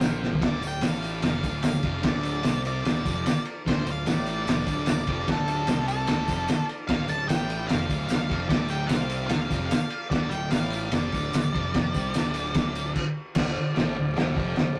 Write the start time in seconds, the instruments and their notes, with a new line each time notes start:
Already playing: transistor combo organ F4 C5 G5
0.00 picked electric bass A#1, distorted electric guitar A#2 A#3, snare, tambourine
0.23 snare
0.33 floor tom
0.40 picked electric bass D1, distorted electric guitar D2 D3, transistor combo organ F4 A4, kick, snare, ride
0.45 transistor combo organ D5, lead electric guitar D5
0.62 picked electric bass D1, distorted electric guitar D2, ride, tambourine
0.68 lead electric guitar G5
0.81 picked electric bass A1, distorted electric guitar A2 A3, snare, ride, tambourine
0.88 lead electric guitar F5
1.02 ride, tambourine
1.21 picked electric bass F1, distorted electric guitar F2 F3, snare, ride, tambourine
1.26 lead electric guitar F5
1.43 picked electric bass D1, distorted electric guitar D2 D3, kick, ride, tambourine
1.63 picked electric bass D1, distorted electric guitar D2, lead electric guitar F5, snare, ride, tambourine
1.83 picked electric bass F1, distorted electric guitar F2 F3, kick, ride
2.02 picked electric bass D1, distorted electric guitar D2 D3, lead electric guitar D5, kick, snare, ride
2.23 ride, tambourine
2.43 picked electric bass C2, distorted electric guitar C3 C4, snare, ride, tambourine
2.65 lead electric guitar D5, ride, tambourine
2.84 picked electric bass D1, distorted electric guitar D2 D3, snare, ride, tambourine
3.04 picked electric bass F1, distorted electric guitar F2 F3, kick, ride, tambourine
3.26 snare, ride, tambourine
3.45 ride
3.65 picked electric bass D1, distorted electric guitar D2 D3, transistor combo organ F4 A4 D5, lead electric guitar C5, kick, snare, ride
3.86 picked electric bass D1, distorted electric guitar D2, ride, tambourine
3.91 lead electric guitar F5
4.06 picked electric bass A1, distorted electric guitar A2 A3, snare, ride, tambourine
4.12 lead electric guitar D5
4.26 ride, tambourine
4.46 picked electric bass F1, distorted electric guitar F2 F3, snare, ride, tambourine
4.51 lead electric guitar D5
4.66 picked electric bass D1, distorted electric guitar D2 D3, kick, ride, tambourine
4.86 picked electric bass D1, distorted electric guitar D2, snare, ride, tambourine
4.91 lead electric guitar D5
5.06 picked electric bass F1, distorted electric guitar F2 F3, kick, ride
5.26 picked electric bass D1, distorted electric guitar D2 D3, kick, snare, ride, tambourine
5.31 lead electric guitar A4
5.48 ride, tambourine
5.67 picked electric bass C2, distorted electric guitar C3 C4, snare, ride, tambourine
5.88 lead electric guitar A4, ride, tambourine
6.07 picked electric bass D1, distorted electric guitar D2 D3, snare, ride, tambourine
6.28 picked electric bass F1, distorted electric guitar F2 F3, kick, ride, tambourine
6.48 snare, ride, tambourine
6.69 ride, tambourine
6.87 picked electric bass D1, distorted electric guitar D2 D3, transistor combo organ F4 A4, lead electric guitar F5, kick, snare, ride
6.93 transistor combo organ D5
7.08 picked electric bass D1, distorted electric guitar D2, lead electric guitar A5, ride, tambourine
7.28 picked electric bass A1, distorted electric guitar A2 A3, lead electric guitar G5, snare, ride, tambourine
7.49 ride, tambourine
7.67 picked electric bass F1, distorted electric guitar F2, lead electric guitar F5, snare, ride, tambourine
7.73 distorted electric guitar F3
7.89 picked electric bass D1, distorted electric guitar D2 D3, kick, ride, tambourine
8.07 picked electric bass D1, distorted electric guitar D2, lead electric guitar F5, ride, tambourine
8.11 snare
8.29 picked electric bass F1, distorted electric guitar F2 F3, kick, ride
8.49 picked electric bass D1, distorted electric guitar D2 D3, lead electric guitar D5, kick, snare, ride
8.68 lead electric guitar G5, ride, tambourine
8.87 picked electric bass C2, distorted electric guitar C3 C4, lead electric guitar F5, snare, ride, tambourine
9.09 ride, tambourine
9.27 picked electric bass D1, distorted electric guitar D2 D3, lead electric guitar F5, snare, ride, tambourine
9.47 picked electric bass F1, distorted electric guitar F2 F3, kick, tambourine
9.52 ride
9.66 lead electric guitar F5
9.71 snare, ride, tambourine
9.90 ride
10.09 picked electric bass D1, distorted electric guitar D2 D3, transistor combo organ F4 A4, lead electric guitar D5, kick, ride
10.13 transistor combo organ D5, snare
10.29 picked electric bass D1, distorted electric guitar D2, lead electric guitar G5, ride, tambourine
10.51 picked electric bass A1, distorted electric guitar A2 A3, lead electric guitar F5, snare, ride, tambourine
10.70 ride, tambourine
10.91 picked electric bass F1, distorted electric guitar F2 F3, lead electric guitar D5, snare, ride, tambourine
11.12 picked electric bass D1, distorted electric guitar D2 D3, kick, ride, tambourine
11.32 picked electric bass D1, distorted electric guitar D2, snare, ride, tambourine
11.53 picked electric bass F1, distorted electric guitar F2 F3, kick, ride
11.74 picked electric bass F1, distorted electric guitar F2 F3, kick, snare, ride, tambourine
11.94 picked electric bass C2, distorted electric guitar C3 C4, kick, ride, tambourine
12.14 picked electric bass D1, distorted electric guitar D2 D3, snare, ride, tambourine
12.34 ride, tambourine
12.54 kick, snare, ride, tambourine
12.75 ride, tambourine
12.96 kick, crash
13.34 picked electric bass D1, distorted electric guitar D2 D3, transistor combo organ F4 A4 D5, kick, snare, crash
13.55 muted distorted electric guitar stroke, muted picked electric bass stroke
13.74 distorted electric guitar A2 A3, snare, crash
13.79 picked electric bass A1
13.96 picked electric bass D1, distorted electric guitar D2
14.14 picked electric bass D1, distorted electric guitar D2 D3, snare, crash
14.35 picked electric bass F1, distorted electric guitar F2 F3, kick
14.56 picked electric bass D1, distorted electric guitar D2, snare, crash